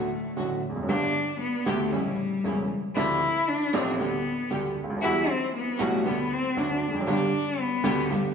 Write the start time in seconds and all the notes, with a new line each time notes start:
Already playing: A3
0.37 A1 A2 D3 F#3 A3 D4 F#4
0.69 E2
0.76 F2
0.83 F#2
0.88 G1 G2 D3 A3 B3 D4 G4
1.41 B3
1.66 D2 D3 A3 B3 G4
1.92 A1 A2 C#3 E3 G3 A3 C#4 E4
2.44 E1 E2 C#3 E3 A3 C#4 E4
2.95 D2 C3 D3 F3 A3 C4 D4 E4 F4
3.48 D4
3.73 A1 A2 C3 F3 A3 C4 D4 F4
3.99 D2 D3 G3 B3 D4 G4
4.50 D2 D3 G3 B3 D4 G4
4.84 C#2
4.90 D2
4.96 D#2
5.01 E2 E3 G3 B3 E4 F#4
5.29 C4
5.55 B3
5.78 B1 B2 E3 G3 A3 B3 E4 F#4
6.05 D2 D3 G3 B3 D4 G4
6.33 C4
6.56 D2 D3 F#3 A3 D4 F#4
6.88 E2
6.94 F2
7.01 F#2
7.07 G1 G2 D3 G3 B3 D4 G4
7.60 B3
7.84 D2 D3 G3 B3 D4 G4
8.10 G1 G2 D3 G3 B3 D4 G4